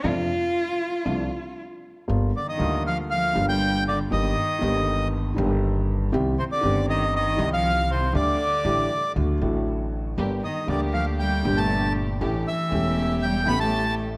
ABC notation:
X:1
M:4/4
L:1/16
Q:1/4=118
K:Fmix
V:1 name="Bandoneon"
z16 | [K:Gm] z2 d e3 f2 f3 g3 d2 | e8 z8 | z2 c d3 e2 e3 f3 c2 |
d8 z8 | z2 e2 d2 f2 g3 a3 z2 | z2 =e6 g2 =b a3 z2 |]
V:2 name="String section"
[A,DF]2 z6 [A,DF]2 z6 | [K:Gm] z16 | z16 | z16 |
z16 | [B,DG]2 z2 [B,DG]6 [G,DG]6 | [A,^CG]2 z2 [A,CG]6 [A,CG]6 |]
V:3 name="Grand piano" clef=bass
[F,,C,F,A,D]2 z6 [C,,C,F,A,D]2 z6 | [K:Gm] [G,,,G,,D,G,B,F]2 z2 [D,,D,G,B,F]6 [G,,,G,,D,G,B,F]6 | [G,,,G,,E,G,B,G]2 z2 [G,,,G,,E,G,B,G]6 [G,,,G,,E,G,B,G]6 | [C,,C,E,G,CG]2 z2 [G,,,G,,E,G,CG]6 [C,,C,E,G,CG]6 |
[D,,D,G,A,G]2 z2 [A,,,A,,D,G,A,G]2 z2 [D,,D,^F,A,^F]2 [A,,,A,,D,F,A,F]6 | [G,,,G,,D,G,B,G]2 z2 [D,,D,G,B,G]6 [G,,,G,,B,,D,G,G]6 | [A,,,A,,=E,A,^CG]2 z2 [=E,,,=E,,E,A,CG]6 [A,,,A,,E,A,CG]6 |]
V:4 name="Cello" clef=bass
F12 z4 | [K:Gm] z2 D, E,3 F,2 F,3 G,3 D,2 | E,8 z8 | z2 C, D,3 E,2 E,3 F,3 C,2 |
D,8 z8 | z2 E,2 D,2 F,2 G,3 A,3 z2 | z2 =E,6 G,2 =B, A,3 z2 |]
V:5 name="Upright bass" clef=bass
F,,2 z6 C,,2 z6 | [K:Gm] G,,,2 z2 D,,6 G,,,6 | G,,,2 z2 G,,,6 G,,,6 | C,,2 z2 G,,,6 C,,6 |
D,,2 z2 A,,,2 z2 D,,2 A,,,6 | G,,,2 z2 D,,6 G,,,6 | A,,,2 z2 =E,,,6 A,,,6 |]